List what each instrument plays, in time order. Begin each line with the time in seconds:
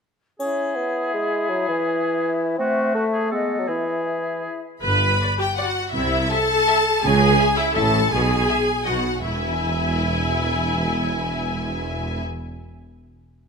0.40 bassoon C#4, clarinet E4, oboe G#4, flute E5, triangle
0.76 bassoon B3
1.14 bassoon G#3
1.49 bassoon F#3
1.69 bassoon E3
2.58 clarinet A3, bassoon C4, oboe F#4, flute E5
2.95 bassoon A3, oboe F#4, flute E5
3.13 oboe G#4
3.31 bassoon G#3, clarinet B3, oboe A4, flute D#5
3.59 bassoon F#3
3.68 bassoon E3, clarinet E4, oboe G#4, flute E5
4.82 double bass section G1, tuba G1, cello section G2, viola section B4, violin section B5
5.22 violin section D5
5.39 viola section G4, violin section G5
5.56 viola section F#4, violin section D5 F#5
5.92 double bass section C2, tuba C2, cello section C3, viola section E4, violin section E5
6.31 viola section A4, violin section E5 A5
6.67 violin section E5
7.03 double bass section C#2, tuba C#2, cello section C#3, viola section G#4, violin section G#5
7.40 violin section E5
7.57 viola section E4, violin section E5
7.75 double bass section A1, tuba A1, cello section A2, viola section A4, violin section E5 A5
8.10 double bass section B1, tuba B1, cello section B2, viola section G#4, violin section G#5
8.49 violin section E5
8.85 tuba B1, double bass section B1, cello section B2, viola section F#4, violin section D#5 F#5
9.24 double bass section E1, tuba E1, cello section E2, viola section E4, violin section E5 G#5